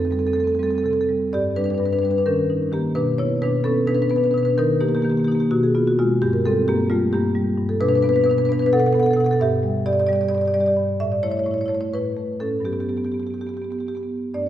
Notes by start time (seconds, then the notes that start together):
Already playing: F2 D#4
0.02 C4 A4
0.11 G3 C4 A4
0.19 C4 A4
0.27 C4 A4
0.33 A3 C4 A4
0.40 A4
0.44 C4 A4
0.52 C4 A4
0.59 G3 C4
0.63 A4
0.68 C4 A4
0.76 C4 A4
0.83 C3 C4 A4
0.91 C4 A4
0.99 C4 A4
1.09 G3
1.33 G2 G4 D5
1.56 G3 D4 B4
1.64 D4 B4
1.70 B4
1.75 D4 B4
1.80 G2 D4
1.86 B4
1.93 D4 B4
1.99 D4 B4
2.03 G3 B4
2.10 D4 B4
2.18 D4 B4
2.26 D#3 C#4 A#4
2.50 D#4
2.72 D#3 A#3 G4
2.95 B2 D4 B4
3.18 B3 E4 C#5
3.42 B2 D4 B4
3.64 B3 C#4 A4
3.87 B2 D4 B4
3.95 D4 B4
4.02 D4 B4
4.10 B3 D4 B4
4.16 D4 B4
4.24 D4 B4
4.31 B2 D4 B4
4.38 B4
4.43 D4 B4
4.50 D4
4.58 D#3 D#4 A#4
4.81 A#3 D#4 G4
4.88 A#3 G4
4.95 A#3 G4
5.02 D#3 A#3 G4
5.10 A#3 G4
5.17 A#3 G4
5.24 A#3 D#4 G4
5.32 A#3 G4
5.40 A#3 G4
5.51 B2 F#4
5.63 G#4
5.75 B3 F4
5.88 F#4
5.99 B2 G#3 F4
6.22 G2 G4
6.33 A#4
6.45 G3 C4 A4
6.68 G2 A#3 G4
6.90 G3 A3 F4
7.13 G2 A#3 G4
7.35 G3
7.58 G2
7.69 A4
7.81 B2 D4 B4
7.88 D4 B4
7.95 D4 B4
8.02 B3 D4 B4
8.09 B4
8.13 D4 B4
8.21 D4 B4
8.26 B2 D4
8.31 B4
8.38 D4 B4
8.45 B3 D4 B4
8.52 D4 B4
8.59 D4 B4
8.66 B4
8.73 B2 A4 F#5
8.79 A4 F#5
8.86 A4 F#5
8.93 B3 A4 F#5
9.00 A4 F#5
9.06 F#5
9.11 A4 F#5
9.17 B2 A4 F#5
9.24 A4 F#5
9.31 A4 F#5
9.40 G2 G4 E5
9.63 G3
9.86 G2 G4 D5
9.93 G4 D5
10.00 G4 D5
10.07 G3 G4 D5
10.13 G4 D5
10.21 G4 D5
10.29 G2 G4 D5
10.35 G4 D5
10.41 D5
10.45 G4 D5
10.54 G3 G4 D5
10.60 G4 D5
10.66 G4 D5
10.77 G2
11.00 A2 E5
11.12 D5
11.23 A3 E4 C#5
11.31 E4 C#5
11.37 E4 C#5
11.44 A2 E4 C#5
11.51 E4 C#5
11.58 E4 C#5
11.66 A3 E4 C#5
11.73 E4 C#5
11.81 E4 C#5
11.94 A2 E4 B4
12.17 A3
12.40 A2 C#4 A4
12.60 G2 F#3
12.65 B3 G4
12.73 B3 G4
12.80 B3 G4
12.89 B3 G4
12.97 B3 G4
13.05 B3 G4
13.12 B3 G4
13.20 B3 G4
13.27 B3 G4
13.34 G4
13.38 B3 G4
13.47 B3 G4
13.54 B3 G4
13.62 B3 G4
13.70 B3 G4
13.79 B3 G4
13.87 B3 G4
13.95 B3 G4
14.03 B3
14.34 G2 A3 D4 D5
14.42 G2 A3 D4